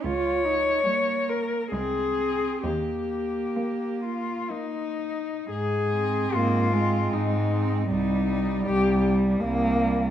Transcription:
<<
  \new Staff \with { instrumentName = "Cello" } { \time 3/4 \key aes \major \tempo 4 = 73 des''4. bes'8 aes'4 | g'4. f'8 ees'4 | aes'4 f'4 ees'4 | ees'4 g'8 r4. | }
  \new Staff \with { instrumentName = "Cello" } { \time 3/4 \key aes \major f'8 ees'8 bes4 c'4 | bes2~ bes8 r8 | r8 c'4 c'4 c'8 | g8 g4 g4 g8 | }
  \new Staff \with { instrumentName = "Cello" } { \time 3/4 \key aes \major r4 g4 aes4 | r4 bes4 bes4 | r4 bes8 aes4. | g2 bes4 | }
  \new Staff \with { instrumentName = "Cello" } { \clef bass \time 3/4 \key aes \major des,4 r4 c,4 | ees,4 r2 | aes,4 aes,4 aes,4 | c,4 c,4 c,4 | }
>>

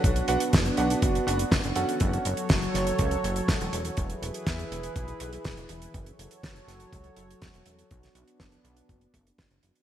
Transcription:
<<
  \new Staff \with { instrumentName = "Electric grand piano" } { \time 4/4 \key fis \minor \tempo 4 = 122 <d' fis' b' fis''>8 <d' fis' b' fis''>8 r8 <d' fis' b' fis''>4 <d' fis' b' fis''>8 r8 <cis' fis' a' fis''>8~ | <cis' fis' a' fis''>8 r2. r8 | r1 | r1 |
r1 | }
  \new Staff \with { instrumentName = "Analog synth pad" } { \time 4/4 \key fis \minor << { d'1 | <fis a' cis''>1 | <e gis' b'>1 | <fis a' cis''>1 |
d'1 | } \\ { <b fis'>1~ | <b fis'>1 | e'1 | fis'1 |
b1 | } >> }
  \new Staff \with { instrumentName = "Analog synth bass" } { \clef bass \time 4/4 \key fis \minor b,,16 r16 b,,16 r16 fis,,16 r16 b,,16 r16 fis,,16 r16 fis,,16 r16 fis,,16 fis,,16 fis,,16 r16 | fis,,16 r16 fis,,16 r16 fis,,16 r16 fis,,16 r16 cis,16 r16 fis,,16 r16 e,,16 e,,16 e,,16 r16 | e,,16 r16 e,,16 r16 e,16 r16 e,,16 r16 b,,16 r16 b,,16 r16 e,,16 e,,16 e,,16 r16 | fis,,16 r16 fis,,16 r16 fis,,16 r16 fis,,16 r16 cis,16 r16 fis,,16 r16 e,,16 e,,16 e,,16 r16 |
b,,16 r16 b,,16 r16 fis,,16 r16 b,,16 r16 fis,,16 r16 fis,,16 r16 fis,,16 fis,,16 fis,,16 r16 | }
  \new DrumStaff \with { instrumentName = "Drums" } \drummode { \time 4/4 <hh bd>16 hh16 hh16 hh16 <hh bd sn>16 hh16 hh16 hh16 <hh bd>16 hh16 hh16 hh16 <hh bd sn>16 hh16 hh16 hh16 | <hh bd>16 hh16 hh16 hh16 <hh bd sn>16 hh16 <hh sn>16 hh16 <hh bd>16 hh16 hh16 hh16 <hh bd sn>16 hh16 hh16 hh16 | <hh bd>16 hh16 hh16 hh16 <hh bd sn>16 hh16 hh16 hh16 <hh bd>16 hh16 hh16 hh16 <hh bd sn>16 hh16 hh16 hh16 | <hh bd>16 hh16 hh16 hh16 <hh bd sn>16 hh16 <hh sn>16 hh16 <hh bd>16 hh16 hh16 hh16 <hh bd sn>16 hh16 hh16 hh16 |
<hh bd>16 <hh sn>16 hh16 hh16 <hh bd sn>16 hh16 hh16 hh16 <hh bd>16 hh16 <hh bd>16 hh16 <hh bd sn>16 hh16 hh16 hh16 | }
>>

